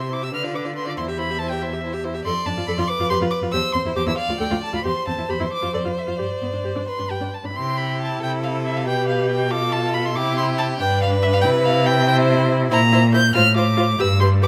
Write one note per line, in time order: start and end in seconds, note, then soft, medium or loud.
0.00 0.35 C3 medium
0.00 0.11 G4 soft
0.00 0.11 E5 soft
0.00 0.14 C6 medium
0.11 0.24 E4 soft
0.11 0.23 C5 soft
0.11 0.25 D6 medium
0.22 0.32 G4 soft
0.22 0.32 E5 soft
0.22 0.33 E6 medium
0.33 0.98 D3 medium
0.33 0.45 D4 soft
0.33 0.46 B4 medium
0.33 0.42 F6 medium
0.43 0.56 F4 medium
0.43 0.56 D5 soft
0.54 0.67 D4 medium
0.54 0.66 B4 medium
0.54 0.63 D6 medium
0.65 0.75 F4 soft
0.65 0.75 D5 soft
0.75 0.88 D4 medium
0.75 0.87 B4 medium
0.75 0.86 C6 medium
0.86 0.97 F4 soft
0.86 0.97 D5 medium
0.86 0.93 D6 medium
0.97 2.25 E2 medium
0.97 1.10 E4 medium
0.97 1.10 C5 medium
0.97 1.05 C6 medium
1.08 1.20 G4 medium
1.08 1.20 E5 medium
1.18 1.31 E4 medium
1.18 1.32 C5 medium
1.18 1.40 B5 medium
1.30 1.40 G4 medium
1.30 1.41 E5 medium
1.39 1.54 E4 medium
1.39 1.53 C5 medium
1.39 1.51 A5 medium
1.49 1.64 G4 medium
1.49 1.64 E5 medium
1.49 1.63 G5 medium
1.61 1.74 E4 medium
1.61 1.74 C5 medium
1.61 1.83 E5 medium
1.73 1.83 G4 medium
1.73 1.83 E5 medium
1.83 1.95 E4 medium
1.83 1.95 C5 medium
1.93 2.06 G4 medium
1.93 2.06 E5 medium
2.04 2.16 E4 medium
2.04 2.16 C5 medium
2.14 2.25 G4 medium
2.14 2.24 E5 medium
2.25 2.29 F2 medium
2.25 2.30 A4 medium
2.25 2.91 D5 medium
2.25 2.47 C6 loud
2.46 2.50 F2 medium
2.46 2.51 D4 medium
2.46 2.67 A5 medium
2.57 2.62 F2 medium
2.57 2.61 F4 medium
2.67 2.72 F2 medium
2.67 2.72 A4 medium
2.67 2.72 B5 medium
2.78 2.82 F2 medium
2.78 2.82 F4 medium
2.78 2.90 C6 medium
2.88 3.54 B4 medium
2.88 3.09 D6 loud
3.00 3.04 F2 medium
3.00 3.04 F4 medium
3.10 3.15 F2 medium
3.10 3.14 G4 medium
3.10 3.18 C6 loud
3.21 3.26 F2 medium
3.21 3.26 F4 medium
3.31 3.39 D6 medium
3.42 3.47 F2 medium
3.42 3.47 F4 medium
3.52 3.58 E2 loud
3.52 3.57 G4 medium
3.52 4.19 C5 medium
3.52 3.73 E6 loud
3.73 3.79 E2 medium
3.73 3.79 C4 medium
3.73 3.81 C6 medium
3.85 3.90 E2 medium
3.85 3.90 E4 medium
3.96 4.00 E2 loud
3.96 4.01 G4 medium
3.96 4.07 D6 loud
4.07 4.12 E2 medium
4.07 4.12 E4 medium
4.07 4.17 E6 loud
4.18 4.84 D5 medium
4.18 4.40 F5 loud
4.29 4.34 D2 medium
4.29 4.34 F4 medium
4.40 4.45 D2 medium
4.40 4.44 A4 medium
4.40 4.62 G5 medium
4.51 4.56 D2 medium
4.51 4.55 F4 medium
4.63 4.74 A5 medium
4.73 4.78 D2 medium
4.73 4.77 F4 medium
4.73 4.85 B5 medium
4.84 4.90 E2 medium
4.84 4.89 G4 medium
4.84 6.89 C5 medium
4.84 5.07 C6 medium
5.07 5.12 E2 medium
5.07 5.11 C4 medium
5.07 5.31 A5 medium
5.18 5.22 E2 soft
5.18 5.22 E4 medium
5.28 5.34 E2 medium
5.28 5.33 G4 medium
5.28 5.43 B5 medium
5.40 5.45 E2 medium
5.40 5.44 E4 soft
5.40 5.52 C6 medium
5.53 5.74 D6 medium
5.62 5.67 F2 medium
5.62 5.66 F4 medium
5.73 5.79 F2 medium
5.73 5.78 A4 medium
5.73 5.82 D5 medium
5.84 5.90 F2 soft
5.84 5.89 F4 medium
5.98 6.02 E5 medium
6.07 6.13 F2 soft
6.07 6.12 F4 medium
6.07 6.19 F5 medium
6.18 6.25 G2 medium
6.18 6.23 G4 medium
6.18 6.87 D5 medium
6.42 6.46 G2 soft
6.42 6.47 B3 soft
6.53 6.58 G2 soft
6.53 6.58 D4 soft
6.64 6.69 G2 medium
6.64 6.69 G4 medium
6.76 6.81 G2 soft
6.76 6.80 D4 soft
6.88 7.35 B4 medium
6.88 7.12 C6 medium
6.99 7.04 G2 soft
6.99 7.03 D4 soft
7.10 7.15 G2 medium
7.10 7.15 G4 medium
7.10 7.36 G5 medium
7.21 7.26 G2 soft
7.21 7.26 D4 soft
7.34 7.46 A5 medium
7.44 7.49 G2 soft
7.44 7.48 D4 soft
7.44 7.58 B5 medium
7.54 8.17 C3 medium
7.54 8.87 E4 medium
7.54 8.22 G4 medium
7.54 7.79 C6 medium
7.77 7.99 B5 medium
8.01 8.22 A5 medium
8.21 8.87 C3 medium
8.21 8.88 A4 medium
8.21 8.31 G5 loud
8.43 8.51 F5 medium
8.66 8.78 E5 medium
8.77 8.87 F5 medium
8.85 10.17 B2 medium
8.85 9.52 G4 medium
8.85 9.50 B4 medium
8.85 9.07 G5 loud
9.08 9.29 F5 medium
9.29 9.52 G5 medium
9.50 10.14 F4 medium
9.50 10.19 A4 medium
9.50 9.74 D6 loud
9.72 9.95 A5 loud
9.94 10.07 B5 medium
10.06 10.17 C6 loud
10.15 10.80 C3 medium
10.15 10.79 E4 medium
10.15 10.82 G4 medium
10.15 10.37 D6 loud
10.38 10.46 C6 loud
10.58 10.66 A5 loud
10.80 11.46 G2 medium
10.80 11.45 D4 medium
10.80 12.08 B4 loud
10.80 11.01 G5 loud
11.02 11.10 F5 loud
11.22 11.27 E5 loud
11.33 11.37 F5 loud
11.41 12.71 C3 loud
11.41 12.07 E4 medium
11.41 11.49 G5 loud
11.64 11.88 F5 loud
11.86 12.07 G5 loud
12.07 12.70 E4 medium
12.07 12.70 C5 medium
12.07 12.16 G5 loud
12.71 13.28 A#2 loud
12.71 12.79 E4 medium
12.71 12.79 C5 medium
12.71 13.11 A#5 loud
12.92 13.00 E4 medium
12.92 13.02 C5 medium
13.13 13.21 E4 medium
13.13 13.22 C5 medium
13.13 13.35 G6 loud
13.34 13.91 A2 loud
13.34 13.42 F4 medium
13.34 13.43 C5 medium
13.34 13.56 F6 loud
13.55 13.63 F4 medium
13.55 13.66 C5 medium
13.55 14.02 D6 loud
13.77 13.85 F4 medium
13.77 13.86 C5 medium
13.98 14.48 G2 loud
13.98 14.06 G4 medium
13.98 14.08 B4 medium
13.98 14.20 E6 loud
14.20 14.28 G4 medium
14.20 14.30 B4 medium
14.20 14.28 C6 loud
14.41 14.48 G4 medium
14.41 14.48 B4 medium
14.41 14.48 D6 loud